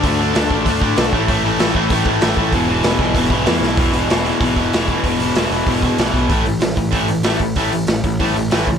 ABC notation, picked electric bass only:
X:1
M:4/4
L:1/8
Q:1/4=191
K:Emix
V:1 name="Picked electric bass" clef=bass
D,,2 D,, A,,, D,, A,, B,,, A,,, | A,,,2 A,,, A,,, A,,, A,,, A,,, A,,, | E,,,2 E,,, B,,, E,,, B,,, E,, B,,, | E,,, E,,, E,,,2 B,,, E,,, E,,,2 |
E,,, E,,, E,,, E,,, E,,,2 B,,, B,,, | A,,, A,,, A,,, A,,, A,,, A,,, A,,, A,,, | A,,, A,,, A,,, A,,, A,,, A,,, A,,, C,, |]